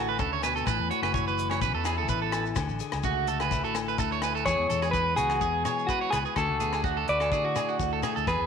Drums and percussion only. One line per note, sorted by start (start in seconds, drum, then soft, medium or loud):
0.19 kick medium
0.19 shekere medium
0.42 cross-stick medium
0.42 closed hi-hat soft
0.42 low agogo medium
0.42 shekere medium
0.57 shekere soft
0.66 kick medium
0.66 cross-stick medium
0.66 low agogo medium
0.66 shekere loud
0.91 closed hi-hat soft
1.03 cross-stick medium
1.03 low agogo medium
1.14 kick loud
1.14 shekere medium
1.28 shekere soft
1.38 closed hi-hat medium
1.38 shekere medium
1.50 cross-stick medium
1.50 low agogo medium
1.62 kick medium
1.62 shekere loud
1.85 cross-stick medium
1.85 closed hi-hat medium
1.85 low agogo medium
1.85 shekere medium
2.09 kick medium
2.09 shekere loud
2.32 cross-stick medium
2.32 closed hi-hat medium
2.32 low agogo medium
2.32 shekere medium
2.46 shekere soft
2.56 kick medium
2.56 cross-stick medium
2.56 low agogo medium
2.56 shekere loud
2.69 shekere soft
2.79 closed hi-hat soft
2.79 shekere medium
2.92 cross-stick medium
2.92 low agogo medium
2.92 shekere soft
3.03 kick medium
3.03 shekere medium
3.27 closed hi-hat medium
3.27 shekere medium
3.40 cross-stick medium
3.40 low agogo medium
3.51 kick medium
3.51 shekere medium
3.65 shekere soft
3.74 cross-stick medium
3.74 closed hi-hat soft
3.74 low agogo medium
3.74 shekere medium
3.88 shekere soft
3.98 kick medium
3.98 shekere loud
4.12 shekere soft
4.22 cross-stick medium
4.22 closed hi-hat soft
4.22 low agogo medium
4.22 shekere medium
4.36 shekere soft
4.45 kick medium
4.45 cross-stick medium
4.45 low agogo medium
4.45 shekere medium
4.70 closed hi-hat soft
4.70 shekere medium
4.82 cross-stick medium
4.82 low agogo medium
4.82 shekere soft
4.93 kick medium
4.93 shekere medium
5.17 closed hi-hat medium
5.17 shekere medium
5.30 cross-stick medium
5.30 low agogo medium
5.41 kick medium
5.41 shekere medium
5.65 cross-stick medium
5.65 closed hi-hat soft
5.65 low agogo medium
5.65 shekere medium
5.79 shekere soft
5.89 kick medium
5.89 shekere medium
6.13 cross-stick medium
6.13 closed hi-hat medium
6.13 low agogo medium
6.13 shekere medium
6.25 shekere soft
6.36 kick medium
6.36 cross-stick medium
6.36 low agogo medium
6.36 shekere medium
6.60 closed hi-hat soft
6.60 shekere medium
6.73 cross-stick medium
6.73 low agogo medium
6.73 shekere soft
6.84 kick medium
6.84 shekere soft
7.08 closed hi-hat soft
7.20 cross-stick medium
7.20 low agogo medium
7.32 kick medium
7.32 shekere medium
7.56 cross-stick medium
7.56 closed hi-hat soft
7.56 low agogo medium
7.56 shekere medium
7.69 shekere soft
7.79 kick medium
7.79 shekere medium
8.03 cross-stick medium
8.03 closed hi-hat soft
8.03 low agogo medium
8.03 shekere medium
8.17 shekere soft
8.27 kick medium
8.27 cross-stick medium
8.27 low agogo medium
8.27 shekere medium